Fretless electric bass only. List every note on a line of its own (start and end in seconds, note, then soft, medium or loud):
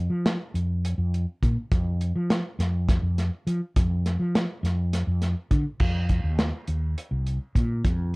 0.10 0.37 F3 medium
0.54 0.94 F2 medium
0.98 1.25 F2 medium
1.43 1.56 A#2 medium
1.72 2.11 F2 loud
2.15 2.42 F3 medium
2.59 2.99 F2 medium
3.02 3.29 F2 medium
3.47 3.60 F3 medium
3.76 4.16 F2 medium
4.19 4.46 F3 medium
4.63 5.03 F2 medium
5.07 5.33 F2 medium
5.51 5.64 D3 medium
5.80 6.20 F2 medium
6.24 6.50 D#2 medium
6.68 6.94 D#2 medium
7.11 7.38 C2 medium
7.55 7.82 A#2 medium
7.85 8.16 F2 medium